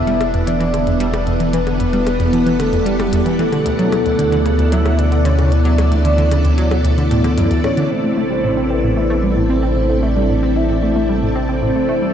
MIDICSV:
0, 0, Header, 1, 8, 480
1, 0, Start_track
1, 0, Tempo, 530973
1, 1387, Time_signature, 4, 2, 24, 8
1, 10971, End_track
2, 0, Start_track
2, 0, Title_t, "Soft synth lead"
2, 0, Program_c, 0, 80
2, 0, Note_on_c, 0, 76, 114
2, 423, Note_off_c, 0, 76, 0
2, 428, Note_on_c, 0, 74, 86
2, 1111, Note_off_c, 0, 74, 0
2, 1386, Note_on_c, 0, 71, 99
2, 2347, Note_on_c, 0, 69, 95
2, 2361, Note_off_c, 0, 71, 0
2, 2586, Note_on_c, 0, 67, 98
2, 2600, Note_off_c, 0, 69, 0
2, 3068, Note_on_c, 0, 69, 112
2, 3082, Note_off_c, 0, 67, 0
2, 4268, Note_on_c, 0, 76, 113
2, 4281, Note_off_c, 0, 69, 0
2, 4508, Note_on_c, 0, 74, 104
2, 4521, Note_off_c, 0, 76, 0
2, 4748, Note_on_c, 0, 73, 104
2, 4761, Note_off_c, 0, 74, 0
2, 4990, Note_on_c, 0, 74, 117
2, 5003, Note_off_c, 0, 73, 0
2, 6668, Note_off_c, 0, 74, 0
2, 6913, Note_on_c, 0, 73, 89
2, 7151, Note_on_c, 0, 72, 92
2, 7165, Note_off_c, 0, 73, 0
2, 7869, Note_on_c, 0, 71, 97
2, 7882, Note_off_c, 0, 72, 0
2, 8583, Note_off_c, 0, 71, 0
2, 8588, Note_on_c, 0, 72, 97
2, 9066, Note_on_c, 0, 74, 107
2, 9080, Note_off_c, 0, 72, 0
2, 9549, Note_on_c, 0, 76, 105
2, 9562, Note_off_c, 0, 74, 0
2, 10028, Note_off_c, 0, 76, 0
2, 10269, Note_on_c, 0, 72, 96
2, 10951, Note_off_c, 0, 72, 0
2, 10971, End_track
3, 0, Start_track
3, 0, Title_t, "String machine"
3, 0, Program_c, 1, 50
3, 0, Note_on_c, 1, 59, 79
3, 0, Note_on_c, 1, 64, 75
3, 0, Note_on_c, 1, 69, 86
3, 922, Note_on_c, 1, 74, 87
3, 1193, Note_on_c, 1, 78, 82
3, 7146, Note_off_c, 1, 59, 0
3, 7146, Note_off_c, 1, 78, 0
3, 7148, Note_on_c, 1, 60, 84
3, 8477, Note_on_c, 1, 79, 76
3, 10971, Note_off_c, 1, 60, 0
3, 10971, Note_off_c, 1, 64, 0
3, 10971, Note_off_c, 1, 69, 0
3, 10971, Note_off_c, 1, 74, 0
3, 10971, Note_off_c, 1, 79, 0
3, 10971, End_track
4, 0, Start_track
4, 0, Title_t, "Synth texture"
4, 0, Program_c, 2, 99
4, 0, Note_on_c, 2, 62, 83
4, 7157, Note_off_c, 2, 62, 0
4, 10971, End_track
5, 0, Start_track
5, 0, Title_t, "Synth arpeggio sound"
5, 0, Program_c, 3, 84
5, 64, Note_on_c, 3, 55, 98
5, 140, Note_off_c, 3, 55, 0
5, 184, Note_on_c, 3, 55, 72
5, 230, Note_off_c, 3, 55, 0
5, 304, Note_on_c, 3, 40, 71
5, 379, Note_off_c, 3, 40, 0
5, 425, Note_on_c, 3, 52, 82
5, 534, Note_off_c, 3, 52, 0
5, 544, Note_on_c, 3, 52, 95
5, 590, Note_off_c, 3, 52, 0
5, 664, Note_on_c, 3, 50, 74
5, 777, Note_off_c, 3, 50, 0
5, 784, Note_on_c, 3, 40, 73
5, 830, Note_off_c, 3, 40, 0
5, 905, Note_on_c, 3, 55, 103
5, 980, Note_off_c, 3, 55, 0
5, 1025, Note_on_c, 3, 55, 76
5, 1070, Note_off_c, 3, 55, 0
5, 1144, Note_on_c, 3, 40, 75
5, 1220, Note_off_c, 3, 40, 0
5, 1265, Note_on_c, 3, 52, 72
5, 1375, Note_off_c, 3, 52, 0
5, 1386, Note_on_c, 3, 52, 99
5, 1431, Note_off_c, 3, 52, 0
5, 1506, Note_on_c, 3, 50, 76
5, 1618, Note_off_c, 3, 50, 0
5, 1625, Note_on_c, 3, 40, 78
5, 1670, Note_off_c, 3, 40, 0
5, 1745, Note_on_c, 3, 55, 93
5, 1820, Note_off_c, 3, 55, 0
5, 1865, Note_on_c, 3, 55, 77
5, 1910, Note_off_c, 3, 55, 0
5, 1985, Note_on_c, 3, 40, 75
5, 2060, Note_off_c, 3, 40, 0
5, 2106, Note_on_c, 3, 52, 72
5, 2214, Note_off_c, 3, 52, 0
5, 2225, Note_on_c, 3, 52, 101
5, 2270, Note_off_c, 3, 52, 0
5, 2344, Note_on_c, 3, 50, 79
5, 2457, Note_off_c, 3, 50, 0
5, 2465, Note_on_c, 3, 40, 72
5, 2511, Note_off_c, 3, 40, 0
5, 2584, Note_on_c, 3, 55, 99
5, 2660, Note_off_c, 3, 55, 0
5, 2705, Note_on_c, 3, 55, 76
5, 2750, Note_off_c, 3, 55, 0
5, 2825, Note_on_c, 3, 40, 83
5, 2900, Note_off_c, 3, 40, 0
5, 2945, Note_on_c, 3, 52, 74
5, 3055, Note_off_c, 3, 52, 0
5, 3066, Note_on_c, 3, 52, 97
5, 3111, Note_off_c, 3, 52, 0
5, 3185, Note_on_c, 3, 50, 74
5, 3298, Note_off_c, 3, 50, 0
5, 3305, Note_on_c, 3, 38, 82
5, 3350, Note_off_c, 3, 38, 0
5, 3426, Note_on_c, 3, 54, 99
5, 3501, Note_off_c, 3, 54, 0
5, 3545, Note_on_c, 3, 54, 78
5, 3591, Note_off_c, 3, 54, 0
5, 3665, Note_on_c, 3, 38, 73
5, 3740, Note_off_c, 3, 38, 0
5, 3784, Note_on_c, 3, 50, 80
5, 3895, Note_off_c, 3, 50, 0
5, 3906, Note_on_c, 3, 50, 101
5, 3951, Note_off_c, 3, 50, 0
5, 4025, Note_on_c, 3, 49, 73
5, 4137, Note_off_c, 3, 49, 0
5, 4146, Note_on_c, 3, 38, 75
5, 4191, Note_off_c, 3, 38, 0
5, 4267, Note_on_c, 3, 54, 97
5, 4341, Note_off_c, 3, 54, 0
5, 4385, Note_on_c, 3, 54, 78
5, 4430, Note_off_c, 3, 54, 0
5, 4506, Note_on_c, 3, 38, 80
5, 4580, Note_off_c, 3, 38, 0
5, 4626, Note_on_c, 3, 50, 75
5, 4736, Note_off_c, 3, 50, 0
5, 4747, Note_on_c, 3, 50, 98
5, 4791, Note_off_c, 3, 50, 0
5, 4867, Note_on_c, 3, 49, 75
5, 4978, Note_off_c, 3, 49, 0
5, 4987, Note_on_c, 3, 38, 72
5, 5031, Note_off_c, 3, 38, 0
5, 5107, Note_on_c, 3, 54, 103
5, 5181, Note_off_c, 3, 54, 0
5, 5227, Note_on_c, 3, 54, 84
5, 5272, Note_off_c, 3, 54, 0
5, 5347, Note_on_c, 3, 38, 77
5, 5421, Note_off_c, 3, 38, 0
5, 5467, Note_on_c, 3, 50, 77
5, 5578, Note_off_c, 3, 50, 0
5, 5589, Note_on_c, 3, 50, 99
5, 5632, Note_off_c, 3, 50, 0
5, 5709, Note_on_c, 3, 49, 81
5, 5819, Note_off_c, 3, 49, 0
5, 5829, Note_on_c, 3, 38, 76
5, 5872, Note_off_c, 3, 38, 0
5, 5948, Note_on_c, 3, 54, 100
5, 6022, Note_off_c, 3, 54, 0
5, 6068, Note_on_c, 3, 54, 76
5, 6112, Note_off_c, 3, 54, 0
5, 6187, Note_on_c, 3, 38, 78
5, 6261, Note_off_c, 3, 38, 0
5, 6308, Note_on_c, 3, 50, 78
5, 6419, Note_off_c, 3, 50, 0
5, 6427, Note_on_c, 3, 45, 98
5, 6539, Note_off_c, 3, 45, 0
5, 6547, Note_on_c, 3, 50, 100
5, 6621, Note_off_c, 3, 50, 0
5, 6668, Note_on_c, 3, 42, 99
5, 6779, Note_off_c, 3, 42, 0
5, 6787, Note_on_c, 3, 38, 75
5, 6899, Note_off_c, 3, 38, 0
5, 6908, Note_on_c, 3, 45, 76
5, 6982, Note_off_c, 3, 45, 0
5, 7027, Note_on_c, 3, 50, 98
5, 7101, Note_off_c, 3, 50, 0
5, 7147, Note_on_c, 3, 45, 84
5, 7221, Note_off_c, 3, 45, 0
5, 7267, Note_on_c, 3, 57, 76
5, 7376, Note_off_c, 3, 57, 0
5, 7387, Note_on_c, 3, 57, 95
5, 7431, Note_off_c, 3, 57, 0
5, 7506, Note_on_c, 3, 55, 73
5, 7618, Note_off_c, 3, 55, 0
5, 7626, Note_on_c, 3, 45, 76
5, 7671, Note_off_c, 3, 45, 0
5, 7747, Note_on_c, 3, 60, 95
5, 7821, Note_off_c, 3, 60, 0
5, 7867, Note_on_c, 3, 60, 75
5, 7911, Note_off_c, 3, 60, 0
5, 7988, Note_on_c, 3, 45, 73
5, 8062, Note_off_c, 3, 45, 0
5, 8108, Note_on_c, 3, 57, 77
5, 8217, Note_off_c, 3, 57, 0
5, 8228, Note_on_c, 3, 57, 102
5, 8272, Note_off_c, 3, 57, 0
5, 8348, Note_on_c, 3, 55, 76
5, 8459, Note_off_c, 3, 55, 0
5, 8468, Note_on_c, 3, 45, 73
5, 8512, Note_off_c, 3, 45, 0
5, 8586, Note_on_c, 3, 60, 98
5, 8661, Note_off_c, 3, 60, 0
5, 8706, Note_on_c, 3, 60, 72
5, 8751, Note_off_c, 3, 60, 0
5, 8827, Note_on_c, 3, 45, 70
5, 8901, Note_off_c, 3, 45, 0
5, 8947, Note_on_c, 3, 57, 76
5, 9055, Note_off_c, 3, 57, 0
5, 9066, Note_on_c, 3, 57, 95
5, 9111, Note_off_c, 3, 57, 0
5, 9186, Note_on_c, 3, 55, 77
5, 9298, Note_off_c, 3, 55, 0
5, 9308, Note_on_c, 3, 45, 76
5, 9352, Note_off_c, 3, 45, 0
5, 9428, Note_on_c, 3, 60, 101
5, 9501, Note_off_c, 3, 60, 0
5, 9548, Note_on_c, 3, 60, 77
5, 9592, Note_off_c, 3, 60, 0
5, 9669, Note_on_c, 3, 45, 75
5, 9742, Note_off_c, 3, 45, 0
5, 9788, Note_on_c, 3, 57, 76
5, 9897, Note_off_c, 3, 57, 0
5, 9908, Note_on_c, 3, 57, 93
5, 9952, Note_off_c, 3, 57, 0
5, 10028, Note_on_c, 3, 55, 80
5, 10139, Note_off_c, 3, 55, 0
5, 10147, Note_on_c, 3, 45, 75
5, 10191, Note_off_c, 3, 45, 0
5, 10266, Note_on_c, 3, 60, 97
5, 10341, Note_off_c, 3, 60, 0
5, 10386, Note_on_c, 3, 60, 75
5, 10431, Note_off_c, 3, 60, 0
5, 10507, Note_on_c, 3, 45, 83
5, 10581, Note_off_c, 3, 45, 0
5, 10627, Note_on_c, 3, 57, 72
5, 10734, Note_off_c, 3, 57, 0
5, 10745, Note_on_c, 3, 57, 95
5, 10791, Note_off_c, 3, 57, 0
5, 10867, Note_on_c, 3, 55, 73
5, 10971, Note_off_c, 3, 55, 0
5, 10971, End_track
6, 0, Start_track
6, 0, Title_t, "Analog synth bass"
6, 0, Program_c, 4, 38
6, 0, Note_on_c, 4, 28, 83
6, 3282, Note_off_c, 4, 28, 0
6, 3306, Note_on_c, 4, 38, 83
6, 7122, Note_off_c, 4, 38, 0
6, 7146, Note_on_c, 4, 33, 84
6, 10962, Note_off_c, 4, 33, 0
6, 10971, End_track
7, 0, Start_track
7, 0, Title_t, "Percussion blips"
7, 187, Note_on_c, 9, 61, 69
7, 277, Note_off_c, 9, 61, 0
7, 668, Note_on_c, 9, 61, 43
7, 758, Note_off_c, 9, 61, 0
7, 1027, Note_on_c, 9, 61, 75
7, 1118, Note_off_c, 9, 61, 0
7, 1509, Note_on_c, 9, 61, 40
7, 1599, Note_off_c, 9, 61, 0
7, 1868, Note_on_c, 9, 61, 72
7, 1958, Note_off_c, 9, 61, 0
7, 2348, Note_on_c, 9, 61, 41
7, 2439, Note_off_c, 9, 61, 0
7, 2709, Note_on_c, 9, 61, 71
7, 2800, Note_off_c, 9, 61, 0
7, 3187, Note_on_c, 9, 61, 41
7, 3278, Note_off_c, 9, 61, 0
7, 3548, Note_on_c, 9, 61, 78
7, 3638, Note_off_c, 9, 61, 0
7, 4029, Note_on_c, 9, 61, 42
7, 4120, Note_off_c, 9, 61, 0
7, 4390, Note_on_c, 9, 61, 75
7, 4480, Note_off_c, 9, 61, 0
7, 4870, Note_on_c, 9, 61, 42
7, 4960, Note_off_c, 9, 61, 0
7, 5229, Note_on_c, 9, 61, 75
7, 5320, Note_off_c, 9, 61, 0
7, 5709, Note_on_c, 9, 61, 45
7, 5799, Note_off_c, 9, 61, 0
7, 6069, Note_on_c, 9, 61, 82
7, 6159, Note_off_c, 9, 61, 0
7, 6548, Note_on_c, 9, 61, 43
7, 6639, Note_off_c, 9, 61, 0
7, 6908, Note_on_c, 9, 61, 76
7, 6998, Note_off_c, 9, 61, 0
7, 10971, End_track
8, 0, Start_track
8, 0, Title_t, "Drums"
8, 67, Note_on_c, 9, 42, 37
8, 158, Note_off_c, 9, 42, 0
8, 187, Note_on_c, 9, 42, 62
8, 277, Note_off_c, 9, 42, 0
8, 307, Note_on_c, 9, 42, 38
8, 397, Note_off_c, 9, 42, 0
8, 427, Note_on_c, 9, 42, 90
8, 518, Note_off_c, 9, 42, 0
8, 548, Note_on_c, 9, 42, 40
8, 638, Note_off_c, 9, 42, 0
8, 668, Note_on_c, 9, 42, 64
8, 758, Note_off_c, 9, 42, 0
8, 787, Note_on_c, 9, 42, 36
8, 878, Note_off_c, 9, 42, 0
8, 907, Note_on_c, 9, 42, 90
8, 997, Note_off_c, 9, 42, 0
8, 1027, Note_on_c, 9, 42, 39
8, 1118, Note_off_c, 9, 42, 0
8, 1148, Note_on_c, 9, 42, 39
8, 1238, Note_off_c, 9, 42, 0
8, 1267, Note_on_c, 9, 42, 35
8, 1358, Note_off_c, 9, 42, 0
8, 1387, Note_on_c, 9, 42, 85
8, 1477, Note_off_c, 9, 42, 0
8, 1509, Note_on_c, 9, 42, 36
8, 1599, Note_off_c, 9, 42, 0
8, 1628, Note_on_c, 9, 42, 62
8, 1718, Note_off_c, 9, 42, 0
8, 1747, Note_on_c, 9, 42, 35
8, 1837, Note_off_c, 9, 42, 0
8, 1868, Note_on_c, 9, 42, 84
8, 1958, Note_off_c, 9, 42, 0
8, 1988, Note_on_c, 9, 42, 36
8, 2078, Note_off_c, 9, 42, 0
8, 2108, Note_on_c, 9, 42, 60
8, 2199, Note_off_c, 9, 42, 0
8, 2229, Note_on_c, 9, 42, 38
8, 2319, Note_off_c, 9, 42, 0
8, 2348, Note_on_c, 9, 42, 83
8, 2439, Note_off_c, 9, 42, 0
8, 2468, Note_on_c, 9, 42, 36
8, 2559, Note_off_c, 9, 42, 0
8, 2588, Note_on_c, 9, 42, 62
8, 2678, Note_off_c, 9, 42, 0
8, 2709, Note_on_c, 9, 42, 37
8, 2800, Note_off_c, 9, 42, 0
8, 2828, Note_on_c, 9, 42, 84
8, 2918, Note_off_c, 9, 42, 0
8, 2947, Note_on_c, 9, 42, 37
8, 3038, Note_off_c, 9, 42, 0
8, 3067, Note_on_c, 9, 42, 38
8, 3158, Note_off_c, 9, 42, 0
8, 3187, Note_on_c, 9, 42, 35
8, 3278, Note_off_c, 9, 42, 0
8, 3307, Note_on_c, 9, 42, 80
8, 3398, Note_off_c, 9, 42, 0
8, 3428, Note_on_c, 9, 42, 38
8, 3518, Note_off_c, 9, 42, 0
8, 3548, Note_on_c, 9, 42, 60
8, 3638, Note_off_c, 9, 42, 0
8, 3668, Note_on_c, 9, 42, 36
8, 3759, Note_off_c, 9, 42, 0
8, 3788, Note_on_c, 9, 42, 87
8, 3879, Note_off_c, 9, 42, 0
8, 3909, Note_on_c, 9, 42, 35
8, 3999, Note_off_c, 9, 42, 0
8, 4029, Note_on_c, 9, 42, 58
8, 4120, Note_off_c, 9, 42, 0
8, 4150, Note_on_c, 9, 42, 39
8, 4240, Note_off_c, 9, 42, 0
8, 4269, Note_on_c, 9, 42, 85
8, 4359, Note_off_c, 9, 42, 0
8, 4390, Note_on_c, 9, 42, 38
8, 4480, Note_off_c, 9, 42, 0
8, 4509, Note_on_c, 9, 42, 61
8, 4599, Note_off_c, 9, 42, 0
8, 4629, Note_on_c, 9, 42, 36
8, 4720, Note_off_c, 9, 42, 0
8, 4748, Note_on_c, 9, 42, 83
8, 4839, Note_off_c, 9, 42, 0
8, 4870, Note_on_c, 9, 42, 36
8, 4960, Note_off_c, 9, 42, 0
8, 4990, Note_on_c, 9, 42, 37
8, 5080, Note_off_c, 9, 42, 0
8, 5110, Note_on_c, 9, 42, 32
8, 5200, Note_off_c, 9, 42, 0
8, 5229, Note_on_c, 9, 42, 81
8, 5320, Note_off_c, 9, 42, 0
8, 5350, Note_on_c, 9, 42, 36
8, 5440, Note_off_c, 9, 42, 0
8, 5469, Note_on_c, 9, 42, 63
8, 5560, Note_off_c, 9, 42, 0
8, 5589, Note_on_c, 9, 42, 37
8, 5679, Note_off_c, 9, 42, 0
8, 5709, Note_on_c, 9, 42, 88
8, 5799, Note_off_c, 9, 42, 0
8, 5828, Note_on_c, 9, 42, 36
8, 5919, Note_off_c, 9, 42, 0
8, 5948, Note_on_c, 9, 42, 58
8, 6038, Note_off_c, 9, 42, 0
8, 6069, Note_on_c, 9, 42, 38
8, 6159, Note_off_c, 9, 42, 0
8, 6189, Note_on_c, 9, 42, 86
8, 6279, Note_off_c, 9, 42, 0
8, 6310, Note_on_c, 9, 42, 37
8, 6400, Note_off_c, 9, 42, 0
8, 6429, Note_on_c, 9, 42, 60
8, 6520, Note_off_c, 9, 42, 0
8, 6548, Note_on_c, 9, 42, 38
8, 6639, Note_off_c, 9, 42, 0
8, 6668, Note_on_c, 9, 42, 85
8, 6758, Note_off_c, 9, 42, 0
8, 6788, Note_on_c, 9, 42, 38
8, 6878, Note_off_c, 9, 42, 0
8, 6908, Note_on_c, 9, 42, 38
8, 6998, Note_off_c, 9, 42, 0
8, 7027, Note_on_c, 9, 42, 36
8, 7117, Note_off_c, 9, 42, 0
8, 10971, End_track
0, 0, End_of_file